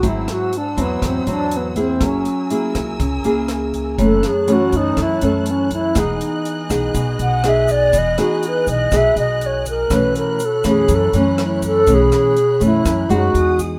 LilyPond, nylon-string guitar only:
\new Staff \with { instrumentName = "Nylon-string guitar" } { \time 4/4 \key b \mixolydian \tempo 4 = 122 << { <fis bis e'>4 r8 <fis bis e'>4 <fis bis e'>4 <ais e' gis'>8~ | <ais e' gis'>8 r8 <ais e' gis'>4 r8 <ais e' gis'>4. | <e a cis'>8 r8 <e a cis'>4. <e a cis'>4. | <b dis' gis'>4. <b dis' gis'>4. <b dis' gis'>4 |
r8 <b dis' gis'>4. <b dis' gis'>2 | <e a cis'>4 r8 <e a cis'>4 <e a cis'>4. | <e a cis'>4 r8 <e a cis'>4 <gis dis' fis'>4. | } \\ { gis,2 gis,2 | fis2 cis2 | fis,2 fis,2 | e2 b,2 |
e2 b,2 | b,2 fis,2 | b,2 fis,4 r4 | } >> }